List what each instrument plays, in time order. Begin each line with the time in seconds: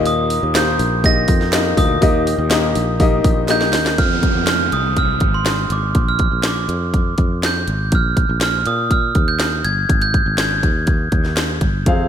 Already playing: fretless electric bass D#2, upright piano A#2 A#3 D#4 G4 D#5
0.06 glockenspiel D#6, open hi-hat
0.30 open hi-hat
0.43 fretless electric bass D#2
0.55 upright piano A#3 D#4 G4 C5, glockenspiel G6, snare, clap, open hi-hat
0.79 fretless electric bass A#1, open hi-hat
1.04 upright piano A#3 D#4 G4 D#5, glockenspiel A#6, kick, open hi-hat
1.28 fretless electric bass F2, kick, open hi-hat
1.41 snare
1.53 upright piano A#3 D#4 G4 D#5, snare, clap, open hi-hat
1.77 fretless electric bass D2, upright piano A#2, glockenspiel D#6, kick, open hi-hat
2.01 fretless electric bass D#2, upright piano A#3 D#4 G4 D#5, kick, open hi-hat
2.27 open hi-hat
2.38 fretless electric bass D#2
2.50 upright piano A#3 D#4 G4 D#5, snare, clap, open hi-hat
2.75 fretless electric bass A#1, open hi-hat
3.00 upright piano A#3 D#4 G4 D#5, kick, open hi-hat
3.24 fretless electric bass A#1, kick, open hi-hat
3.48 upright piano A#3 D#4 G4 D#5, glockenspiel G6, snare, clap, open hi-hat
3.61 snare
3.73 fretless electric bass D#2, snare, open hi-hat
3.86 snare
3.98 fretless electric bass F2, glockenspiel F6, kick, closed hi-hat, downlifter
4.23 kick, closed hi-hat
4.35 fretless electric bass F2
4.47 glockenspiel F6, snare, closed hi-hat
4.72 fretless electric bass C2, glockenspiel D#6, closed hi-hat
4.97 glockenspiel F6, kick, closed hi-hat
5.20 fretless electric bass G#1, kick, closed hi-hat
5.34 glockenspiel C6
5.46 snare, closed hi-hat
5.70 fretless electric bass G#1, glockenspiel D6, closed hi-hat
5.95 fretless electric bass A#1, kick, closed hi-hat
6.09 glockenspiel F6
6.19 kick, closed hi-hat
6.32 fretless electric bass A#1
6.43 glockenspiel D6, snare, closed hi-hat
6.69 fretless electric bass F2, closed hi-hat
6.94 kick, closed hi-hat
7.18 fretless electric bass F2, kick, closed hi-hat
7.43 glockenspiel G6, snare, closed hi-hat
7.68 fretless electric bass G#1, closed hi-hat
7.92 fretless electric bass A#1, glockenspiel F6, kick, closed hi-hat
8.17 kick, closed hi-hat
8.29 fretless electric bass A#1
8.41 glockenspiel F6, snare, closed hi-hat
8.66 fretless electric bass A#2, glockenspiel D#6, closed hi-hat
8.91 glockenspiel F6, kick, closed hi-hat
9.15 fretless electric bass D#2, kick, closed hi-hat
9.28 glockenspiel G6
9.40 snare, closed hi-hat
9.64 fretless electric bass G1, glockenspiel G#6, closed hi-hat
9.89 fretless electric bass G#1, kick, closed hi-hat
10.02 glockenspiel G6, closed hi-hat
10.14 kick, closed hi-hat
10.26 fretless electric bass G#1
10.38 glockenspiel G#6, snare, closed hi-hat
10.63 fretless electric bass D#2, kick, closed hi-hat
10.87 kick, closed hi-hat
11.12 fretless electric bass D#2, kick, closed hi-hat
11.25 snare
11.37 snare, closed hi-hat
11.61 fretless electric bass G1, kick, closed hi-hat
11.86 fretless electric bass F2, upright piano C3 C4 F4 G#4 F5, kick, closed hi-hat